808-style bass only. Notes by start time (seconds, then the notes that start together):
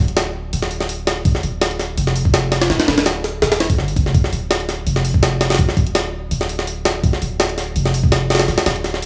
0.00 D1
0.53 D1
1.25 D1
1.44 D1
1.98 F1
2.70 D1
2.88 D1
3.42 D1
3.78 G1
3.96 G1
4.06 F1
4.15 D1
4.32 D1
4.87 F1
5.59 D1
5.77 D1
6.31 D1
7.03 D1
7.22 D1
7.76 F1
8.48 D1
8.66 D1